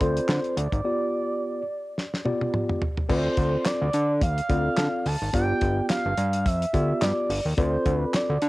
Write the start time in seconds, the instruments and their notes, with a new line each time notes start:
0.00 analog synth bass D2, tine electric piano C4 F4 A4 D5, analog synth lead C5, kick, closed hi-hat
0.17 closed hi-hat
0.29 analog synth bass D3, snare, clap
0.44 closed hi-hat
0.57 analog synth bass D2, analog synth lead D5, closed hi-hat
0.72 analog synth bass G#1, kick, closed hi-hat
0.84 tine electric piano B3 F4 G4 D5
1.98 snare
2.14 snare
2.25 tine electric piano B3 F4 G4 D5, high tom
2.41 high tom
2.54 mid tom
2.69 mid tom
2.81 floor tom
2.97 floor tom
3.09 analog synth bass D2, tine electric piano C4 F4 A4 D5, analog synth lead C5, kick, crash
3.37 analog synth bass D2, kick, closed hi-hat
3.65 analog synth lead D5, snare, clap, closed hi-hat
3.82 analog synth bass D2
3.93 analog synth bass D3, closed hi-hat
4.21 analog synth bass D2, analog synth lead F5, kick, closed hi-hat
4.38 closed hi-hat
4.49 analog synth bass D2, tine electric piano C4 F4 A4 D5, kick, closed hi-hat
4.77 analog synth bass D3, snare, clap, closed hi-hat
5.06 analog synth bass D2, analog synth lead A5, open hi-hat
5.22 analog synth bass G#1
5.33 analog synth bass G1, tine electric piano B3 F4 G4 D5, analog synth lead G5, kick, closed hi-hat
5.61 analog synth bass G1, kick, closed hi-hat
5.89 analog synth lead F5, snare, clap, closed hi-hat
6.06 analog synth bass G1
6.17 analog synth bass G2, closed hi-hat
6.33 closed hi-hat
6.46 analog synth bass F2, analog synth lead E5, kick, closed hi-hat
6.62 closed hi-hat
6.73 analog synth bass D2, tine electric piano B3 F4 G4 D5, kick, closed hi-hat
7.01 analog synth bass G2, analog synth lead D5, snare, clap, closed hi-hat
7.30 analog synth bass G1, open hi-hat
7.45 analog synth bass D#2
7.57 analog synth bass D2, tine electric piano C4 F4 A4 D5, analog synth lead C5, kick, closed hi-hat
7.86 analog synth bass D2, kick, closed hi-hat
7.97 analog synth lead B4
8.14 analog synth lead D5, snare, clap, closed hi-hat
8.30 analog synth bass D2
8.42 analog synth bass D3, closed hi-hat